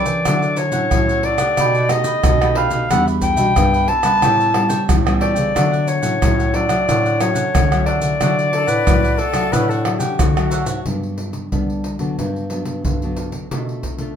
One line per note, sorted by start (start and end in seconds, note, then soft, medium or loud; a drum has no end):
0.00 0.23 E3 medium
0.00 0.22 C#4 medium
0.00 0.22 G4 medium
0.00 0.22 A#4 medium
0.00 0.60 D5 medium
0.06 0.23 E3 medium
0.06 0.24 A4 soft
0.06 0.24 C#5 soft
0.06 0.23 G5 medium
0.06 pandeiro medium
0.06 maracas medium
0.25 0.68 D3 medium
0.25 0.89 D3 medium
0.25 0.71 F#3 medium
0.25 0.41 D4 medium
0.25 0.71 E4 medium
0.25 0.42 A4 medium
0.25 0.42 C#5 medium
0.25 0.42 F#5 medium
0.25 pandeiro medium
0.25 tamborim medium
0.25 maracas medium
0.25 surdo medium
0.42 0.74 A4 soft
0.42 0.73 C#5 soft
0.42 0.72 F#5 soft
0.42 pandeiro soft
0.42 maracas soft
0.57 1.26 C#5 loud
0.57 pandeiro medium
0.57 maracas medium
0.72 0.88 A2 medium
0.72 0.86 F#3 medium
0.72 0.86 C#4 medium
0.72 0.86 E4 medium
0.72 1.07 A4 medium
0.72 1.07 C#5 medium
0.72 1.06 F#5 medium
0.72 pandeiro medium
0.72 maracas medium
0.91 1.49 A2 medium
0.91 1.56 A2 medium
0.91 1.37 F#3 medium
0.91 1.37 C#4 medium
0.91 1.37 E4 medium
0.91 pandeiro medium
0.91 tamborim medium
0.91 maracas medium
0.91 surdo medium
1.09 1.24 A4 soft
1.09 1.24 C#5 soft
1.09 1.25 F#5 soft
1.09 pandeiro soft
1.09 maracas soft
1.23 1.40 D4 soft
1.23 1.40 A4 medium
1.23 1.39 C#5 medium
1.23 1.92 D5 loud
1.23 1.38 F#5 medium
1.23 pandeiro medium
1.38 1.86 A3 medium
1.38 1.86 D#4 medium
1.38 1.86 G4 medium
1.38 1.57 A4 medium
1.38 1.57 C#5 medium
1.38 1.56 F#5 medium
1.38 pandeiro medium
1.38 tamborim medium
1.38 maracas medium
1.57 2.15 B2 loud
1.57 2.22 B2 medium
1.57 1.74 A4 medium
1.57 1.74 B4 medium
1.57 1.75 D#5 medium
1.57 1.74 G5 medium
1.57 pandeiro medium
1.57 tamborim medium
1.57 maracas medium
1.57 surdo medium
1.75 1.89 B4 soft
1.75 1.90 D#5 medium
1.75 1.90 G5 medium
1.75 pandeiro soft
1.75 maracas soft
1.89 2.22 A3 medium
1.89 2.22 D#4 medium
1.89 2.23 G4 medium
1.89 2.59 D#5 loud
1.89 pandeiro medium
1.89 tamborim medium
1.89 maracas medium
2.04 2.39 B4 medium
2.04 2.39 D#5 medium
2.04 2.38 G5 medium
2.04 pandeiro medium
2.04 maracas medium
2.23 2.67 B2 loud
2.23 2.88 B2 medium
2.23 pandeiro medium
2.23 tamborim medium
2.23 maracas medium
2.23 surdo loud
2.41 2.86 A3 medium
2.41 2.86 D#4 medium
2.41 2.87 G4 medium
2.41 2.55 B4 soft
2.41 2.55 D#5 medium
2.41 2.56 G5 medium
2.41 pandeiro soft
2.41 tamborim medium
2.41 maracas soft
2.55 2.72 A4 medium
2.55 2.71 B4 medium
2.55 2.70 D#5 medium
2.55 2.90 F5 loud
2.55 2.69 G5 medium
2.55 pandeiro medium
2.71 2.87 B2 medium
2.71 2.89 B4 soft
2.71 2.88 D#5 medium
2.71 2.88 G5 medium
2.71 pandeiro medium
2.71 maracas medium
2.89 3.33 E2 medium
2.89 3.54 E3 medium
2.89 3.36 G3 medium
2.89 3.05 D4 medium
2.89 3.36 D4 medium
2.89 3.36 F#4 medium
2.89 3.06 G4 medium
2.89 3.06 B4 medium
2.89 3.05 E5 medium
2.89 3.06 F#5 loud
2.89 pandeiro medium
2.89 tamborim medium
2.89 maracas medium
2.89 surdo medium
3.07 3.38 G4 soft
3.07 3.37 B4 soft
3.07 3.35 E5 soft
3.07 pandeiro soft
3.07 maracas soft
3.22 3.90 G5 loud
3.22 pandeiro medium
3.22 maracas medium
3.22 surdo medium
3.36 3.53 B2 medium
3.36 3.51 G3 medium
3.36 3.51 D4 medium
3.36 3.51 F#4 medium
3.36 3.72 G4 medium
3.36 3.71 B4 medium
3.36 3.70 E5 medium
3.36 pandeiro medium
3.36 maracas medium
3.56 3.90 G2 loud
3.56 4.20 B2 medium
3.56 3.88 G3 medium
3.56 3.88 D4 medium
3.56 pandeiro medium
3.56 tamborim medium
3.56 maracas medium
3.56 surdo loud
3.73 3.87 G4 soft
3.73 3.88 B4 soft
3.73 3.89 E5 soft
3.73 pandeiro soft
3.73 maracas soft
3.87 4.04 D4 soft
3.87 4.05 G4 soft
3.87 4.03 B4 medium
3.87 4.02 E5 soft
3.87 4.95 A5 loud
3.87 pandeiro medium
4.03 4.50 G3 medium
4.03 4.50 B3 medium
4.03 4.50 C#4 medium
4.03 4.21 G4 medium
4.03 4.21 B4 medium
4.03 4.20 E5 medium
4.03 pandeiro medium
4.03 tamborim medium
4.03 maracas medium
4.22 4.79 A2 loud
4.22 4.86 A2 medium
4.22 4.38 G4 medium
4.22 4.38 A4 medium
4.22 4.39 C#5 medium
4.22 4.38 G5 medium
4.22 pandeiro medium
4.22 tamborim medium
4.22 maracas medium
4.22 surdo medium
4.40 4.54 A4 soft
4.40 4.54 C#5 soft
4.40 4.54 G5 medium
4.40 pandeiro soft
4.40 maracas soft
4.54 5.00 G3 medium
4.54 5.00 B3 medium
4.54 5.00 C#4 medium
4.54 pandeiro medium
4.54 tamborim medium
4.69 5.04 A4 medium
4.69 5.03 C#5 medium
4.69 5.03 G5 medium
4.69 pandeiro medium
4.69 maracas medium
4.89 5.31 A2 medium
4.89 5.52 E3 medium
4.89 pandeiro medium
4.89 tamborim medium
4.89 maracas medium
4.89 surdo loud
5.06 5.51 G3 medium
5.06 5.51 B3 medium
5.06 5.51 C#4 medium
5.06 5.19 A4 soft
5.06 5.20 C#5 medium
5.06 5.21 G5 medium
5.06 pandeiro soft
5.06 tamborim loud
5.06 maracas soft
5.20 5.36 G4 medium
5.20 5.36 A4 medium
5.20 5.35 C#5 medium
5.20 5.90 D5 loud
5.20 5.34 G5 medium
5.20 pandeiro medium
5.35 5.51 C#3 medium
5.35 5.53 A4 soft
5.35 5.53 C#5 soft
5.35 5.52 G5 medium
5.35 pandeiro medium
5.35 maracas medium
5.55 5.98 D3 medium
5.55 6.19 D3 medium
5.55 6.00 F#3 medium
5.55 5.70 D4 medium
5.55 6.01 E4 medium
5.55 5.71 A4 medium
5.55 5.71 C#5 medium
5.55 5.71 F#5 medium
5.55 pandeiro medium
5.55 tamborim medium
5.55 maracas medium
5.55 surdo medium
5.72 6.02 A4 soft
5.72 6.02 C#5 soft
5.72 6.01 F#5 medium
5.72 pandeiro soft
5.72 maracas soft
5.88 6.56 C#5 medium
5.88 pandeiro medium
5.88 maracas medium
6.02 6.18 A2 medium
6.02 6.15 F#3 medium
6.02 6.16 C#4 medium
6.02 6.16 E4 medium
6.02 6.36 A4 medium
6.02 6.36 C#5 medium
6.02 6.35 F#5 medium
6.02 pandeiro medium
6.02 maracas medium
6.21 6.78 A2 loud
6.21 6.85 A2 medium
6.21 6.50 F#3 medium
6.21 6.50 C#4 medium
6.21 6.50 E4 medium
6.21 pandeiro medium
6.21 tamborim medium
6.21 maracas medium
6.21 surdo loud
6.38 6.53 A4 soft
6.38 6.54 C#5 soft
6.38 6.54 F#5 medium
6.38 pandeiro soft
6.38 maracas soft
6.54 6.65 F#3 medium
6.54 6.65 C#4 medium
6.54 6.70 D4 medium
6.54 6.65 E4 medium
6.54 6.70 A4 soft
6.54 6.69 C#5 medium
6.54 7.22 D5 loud
6.54 6.68 F#5 medium
6.54 pandeiro medium
6.69 7.15 F#3 medium
6.69 7.15 E4 medium
6.69 6.86 A4 medium
6.69 6.86 C#5 medium
6.69 6.85 F#5 medium
6.69 pandeiro medium
6.69 tamborim medium
6.69 maracas medium
6.88 7.44 A2 loud
6.88 7.52 D3 medium
6.88 7.03 D4 medium
6.88 7.04 A4 medium
6.88 7.04 C#5 medium
6.88 7.04 F#5 medium
6.88 pandeiro medium
6.88 tamborim medium
6.88 maracas medium
6.88 surdo medium
7.05 7.19 A4 soft
7.05 7.19 C#5 soft
7.05 7.19 F#5 medium
7.05 pandeiro soft
7.05 maracas soft
7.20 7.52 F#3 medium
7.20 7.52 C#4 medium
7.20 7.52 E4 medium
7.20 7.85 C#5 medium
7.20 muted cavaquinho stroke soft
7.20 pandeiro medium
7.20 tamborim medium
7.20 maracas medium
7.34 7.69 A4 medium
7.34 7.68 C#5 medium
7.34 7.68 F#5 medium
7.34 pandeiro medium
7.34 maracas medium
7.54 8.18 A2 medium
7.54 7.96 D3 medium
7.54 pandeiro medium
7.54 tamborim medium
7.54 maracas medium
7.54 surdo loud
7.71 8.16 F#3 medium
7.71 8.16 C#4 medium
7.71 8.17 E4 medium
7.71 7.86 A4 soft
7.71 7.86 C#5 soft
7.71 7.86 F#5 medium
7.71 pandeiro soft
7.71 tamborim medium
7.71 maracas soft
7.86 8.02 D4 medium
7.86 8.02 A4 medium
7.86 8.01 C#5 medium
7.86 10.15 D5 medium
7.86 8.00 F#5 medium
7.86 pandeiro medium
8.01 8.16 D3 medium
8.01 8.19 A4 soft
8.01 8.19 C#5 soft
8.01 8.18 F#5 soft
8.01 pandeiro medium
8.01 maracas medium
8.20 8.63 D3 medium
8.20 8.84 D3 medium
8.20 8.63 F#3 medium
8.20 8.36 D4 medium
8.20 8.64 E4 medium
8.20 8.36 A4 medium
8.20 8.37 C#5 medium
8.20 8.37 F#5 medium
8.20 pandeiro medium
8.20 tamborim medium
8.20 maracas medium
8.20 surdo medium
8.39 8.68 A4 soft
8.39 pandeiro soft
8.39 maracas soft
8.52 8.70 A4 medium
8.52 pandeiro medium
8.67 8.83 A2 medium
8.67 9.01 A4 medium
8.67 9.20 B4 loud
8.67 9.00 F#5 medium
8.67 pandeiro medium
8.67 maracas medium
8.86 9.20 A2 medium
8.86 9.50 A2 medium
8.86 9.18 F#3 medium
8.86 9.18 E4 medium
8.86 pandeiro medium
8.86 tamborim medium
8.86 maracas medium
8.86 surdo loud
9.04 9.17 A4 soft
9.04 9.18 C#5 soft
9.04 9.19 F#5 soft
9.04 pandeiro soft
9.04 maracas soft
9.18 9.34 D4 soft
9.18 9.54 A4 loud
9.18 9.34 A4 medium
9.18 9.33 C#5 medium
9.18 9.32 F#5 medium
9.18 pandeiro medium
9.33 9.80 F#3 medium
9.33 9.80 E4 medium
9.33 9.51 A4 medium
9.33 9.51 C#5 medium
9.33 9.50 F#5 medium
9.33 pandeiro medium
9.33 tamborim medium
9.33 maracas medium
9.52 10.09 A2 loud
9.52 10.16 D3 medium
9.52 9.68 D4 medium
9.52 9.69 A4 medium
9.52 9.71 B4 loud
9.52 9.69 C#5 medium
9.52 9.69 F#5 medium
9.52 pandeiro medium
9.52 tamborim medium
9.52 maracas medium
9.52 surdo medium
9.69 10.00 A4 medium
9.69 9.85 C#5 soft
9.69 9.85 F#5 soft
9.69 pandeiro soft
9.69 maracas soft
9.73 9.84 A4 soft
9.85 10.30 F#3 medium
9.85 10.30 E4 medium
9.85 muted cavaquinho stroke soft
9.85 pandeiro medium
9.85 tamborim medium
9.99 10.21 G4 medium
9.99 10.35 A4 medium
9.99 10.34 C#5 medium
9.99 10.33 F#5 medium
9.99 pandeiro medium
9.99 maracas medium
10.19 10.83 A2 medium
10.19 10.62 D3 loud
10.19 10.86 F#4 medium
10.19 pandeiro medium
10.19 tamborim medium
10.19 maracas medium
10.19 surdo loud
10.37 10.81 F#3 medium
10.37 10.81 C#4 medium
10.37 10.81 E4 medium
10.37 10.50 A4 soft
10.37 10.51 C#5 soft
10.37 10.52 F#5 soft
10.37 pandeiro soft
10.37 tamborim medium
10.37 maracas soft
10.51 10.67 D4 medium
10.51 10.67 A4 medium
10.51 10.67 C#5 medium
10.51 10.66 F#5 medium
10.51 pandeiro medium
10.51 maracas medium
10.66 10.81 G#2 medium
10.66 10.84 A4 soft
10.66 10.84 C#5 soft
10.66 10.83 F#5 soft
10.66 pandeiro medium
10.66 maracas medium
10.85 11.42 G2 medium
10.85 11.49 G2 soft
10.85 11.47 F#3 medium
10.85 11.47 B3 medium
10.85 11.47 D4 medium
10.85 pandeiro medium
10.85 surdo medium
11.03 pandeiro soft
11.18 pandeiro soft
11.33 pandeiro soft
11.51 12.15 D3 medium
11.51 11.94 G3 medium
11.51 11.84 B3 soft
11.51 11.84 D4 medium
11.51 pandeiro medium
11.51 surdo medium
11.70 pandeiro soft
11.84 pandeiro medium
11.99 12.14 D3 medium
11.99 12.45 F#3 soft
11.99 12.45 B3 medium
11.99 12.46 D4 medium
11.99 pandeiro soft
12.18 12.61 G2 medium
12.18 12.82 G2 soft
12.18 pandeiro medium
12.18 surdo soft
12.36 pandeiro soft
12.50 12.96 F#3 soft
12.50 12.96 B3 soft
12.50 12.96 D4 soft
12.50 pandeiro medium
12.65 12.81 G2 medium
12.65 pandeiro medium
12.85 13.41 G2 medium
12.85 13.49 D3 soft
12.85 pandeiro medium
12.85 surdo medium
13.02 13.47 F#3 medium
13.02 13.47 B3 medium
13.02 13.47 D4 medium
13.02 pandeiro soft
13.16 pandeiro medium
13.32 pandeiro soft
13.51 13.85 B2 medium
13.51 14.15 B2 medium
13.51 13.97 A3 soft
13.51 13.97 D4 soft
13.51 13.97 F4 medium
13.51 pandeiro medium
13.51 surdo medium
13.69 pandeiro soft
13.83 pandeiro medium
13.83 surdo medium
13.98 14.12 A3 medium
13.98 14.12 D4 medium
13.98 14.12 F4 medium
13.98 pandeiro medium